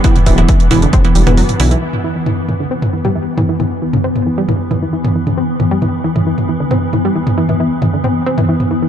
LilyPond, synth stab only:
\new Staff \with { instrumentName = "Synth stab" } { \time 4/4 \key c \lydian \tempo 4 = 135 <e b e'>16 r8 <e b e'>16 r8 <e b e'>16 r8 <e b e'>8 <e b e'>16 r8 <e b e'>16 r16 | r1 | r1 | r1 |
r1 | }